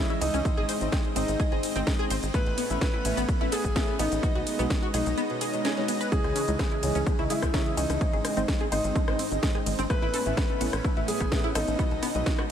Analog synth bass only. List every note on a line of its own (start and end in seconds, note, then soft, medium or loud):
0.21 0.30 C#2 medium
0.34 0.42 C#2 medium
0.57 0.65 G#1 medium
0.81 0.89 G#1 medium
1.16 1.25 G#1 medium
1.28 1.36 G#1 medium
1.52 1.60 G#1 medium
1.76 1.84 G#1 medium
2.10 2.19 G#1 medium
2.23 2.31 G#1 medium
2.46 2.54 A1 medium
2.70 2.78 A1 medium
3.05 3.14 A1 loud
3.17 3.25 A1 medium
3.41 3.49 A1 medium
3.65 3.72 A1 medium
3.99 4.08 A1 medium
4.12 4.20 A1 medium
4.35 4.43 B1 medium
4.59 4.67 B1 medium
4.94 5.03 B1 medium
5.06 5.14 B1 medium
6.24 6.32 C#2 medium
6.48 6.56 C#2 medium
6.83 6.92 C#2 loud
6.95 7.03 C#2 medium
7.19 7.27 C#2 medium
7.42 7.50 C#2 medium
7.77 7.86 C#2 medium
7.90 7.98 C#2 medium
8.13 8.21 G#1 medium
8.37 8.45 G#1 medium
8.72 8.81 G#1 medium
8.84 8.92 G#1 medium
9.08 9.16 G#1 medium
9.31 9.39 G#1 medium
9.66 9.75 G#1 medium
9.79 9.87 G#1 medium
10.02 10.10 A1 medium
10.26 10.34 A1 medium
10.61 10.70 A1 loud
10.73 10.81 A1 medium
10.97 11.05 A1 medium
11.20 11.28 A1 medium
11.55 11.64 A1 loud
11.68 11.76 A1 medium
11.91 11.99 B1 medium
12.15 12.23 B1 medium